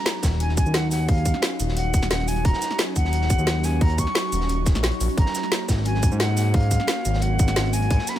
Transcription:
Already playing: F#3 C#4 D#4 F#4 A#5
0.06 snare, closed hi-hat
0.23 D#1, kick, snare, closed hi-hat, cabasa
0.31 snare
0.40 G#5, closed hi-hat
0.49 snare
0.57 G#5, kick, closed hi-hat, cabasa
0.66 D#2, cabasa
0.74 F#5, snare, closed hi-hat
0.91 F#5, snare, closed hi-hat, open hi-hat, cabasa
1.08 F5, kick, closed hi-hat, open hi-hat
1.18 closed hi-hat
1.25 kick, closed hi-hat, cabasa
1.34 snare
1.42 snare, closed hi-hat
1.60 D#1, closed hi-hat, cabasa
1.69 snare
1.77 F#5, closed hi-hat
1.94 D#1, kick, closed hi-hat, cabasa
2.03 snare, closed hi-hat, cabasa
2.10 D#1 F#5, snare, closed hi-hat
2.20 closed hi-hat
2.28 G#5, closed hi-hat, open hi-hat, cabasa
2.36 closed hi-hat
2.45 D#1 A#5, kick, closed hi-hat
2.53 snare
2.62 snare, closed hi-hat, cabasa
2.70 snare, closed hi-hat
2.78 snare, closed hi-hat
2.96 D#1 F#5, kick, closed hi-hat, cabasa
3.05 snare
3.13 closed hi-hat
3.22 snare
3.30 kick, closed hi-hat, cabasa
3.39 D#2, cabasa
3.47 snare, closed hi-hat
3.63 G#5, snare, closed hi-hat, open hi-hat, cabasa
3.81 A#5, kick, closed hi-hat, open hi-hat
3.90 closed hi-hat
3.98 C#6, kick, closed hi-hat, cabasa
4.07 snare
4.15 snare, closed hi-hat
4.32 D#1, closed hi-hat, cabasa
4.41 snare
4.49 closed hi-hat
4.66 kick, snare, closed hi-hat, cabasa
4.75 A#1, snare, closed hi-hat, cabasa
4.83 A#1, snare, closed hi-hat
4.91 closed hi-hat
5.00 A#1, closed hi-hat, open hi-hat, cabasa
5.09 closed hi-hat
5.17 G#1 A#3 A#5, kick, closed hi-hat
5.26 snare
5.35 snare, closed hi-hat, cabasa
5.43 snare, closed hi-hat
5.52 snare, closed hi-hat
5.68 G#1, kick, snare, closed hi-hat, cabasa
5.77 snare
5.85 G#5, closed hi-hat
5.95 snare
6.03 kick, closed hi-hat, cabasa
6.12 G#2, cabasa
6.20 F#5, snare, closed hi-hat
6.37 snare, closed hi-hat, open hi-hat, cabasa
6.54 F5, kick, closed hi-hat, open hi-hat
6.63 closed hi-hat
6.71 kick, closed hi-hat, cabasa
6.80 snare
6.87 snare, closed hi-hat
7.05 G#1, closed hi-hat, cabasa
7.14 snare
7.22 F#5, closed hi-hat
7.39 G#1, kick, closed hi-hat, cabasa
7.48 snare, closed hi-hat, cabasa
7.56 G#1, snare, closed hi-hat
7.65 closed hi-hat
7.73 G#5, closed hi-hat, open hi-hat, cabasa
7.82 closed hi-hat
7.90 G#1 G#4, kick, closed hi-hat
7.99 snare
8.07 B5, snare, closed hi-hat, cabasa
8.16 A#5, snare, closed hi-hat

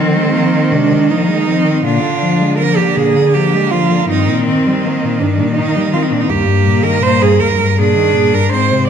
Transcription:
Already playing: D#3 F3 C4
0.16 G#3
0.34 F3 A#3
0.54 D#3
0.72 C3 G#3 D4
0.92 D#3
1.10 F3 A#3 D#4
1.28 G#3
1.47 F3 C4
1.65 D#3
1.84 A#2 D3 D4 F4
2.02 D3
2.21 F3
2.41 G#3
2.58 F3 A#3 A#4
2.77 D3 G4
2.96 A#2 G#4
3.16 D3
3.34 F3 A#3 G4
3.54 G#3
3.71 F3 F4
3.91 D3
4.09 G2 D#3 C4 D#4
4.28 A#2
4.47 D#3 C4
4.66 G3
4.85 D#3 A#3
5.04 A#2
5.20 G2 G3 D4
5.40 A#2
5.55 D#3 A#3 D#4
5.76 G3
5.92 D#3 C4 F4
6.02 D#4
6.11 A#2 D4
6.20 D#4
6.28 D#2 G2 A#3 G4
6.47 G2
6.65 A#2
6.84 D#3 A#4
7.02 A#2 C5
7.21 G2 G#4
7.39 D#2 A#4
7.58 G2
7.78 A#2 D4 G#4
7.97 D#3
8.15 A#2
8.33 G2 A#4
8.52 G#2 C4 C5
8.72 C3

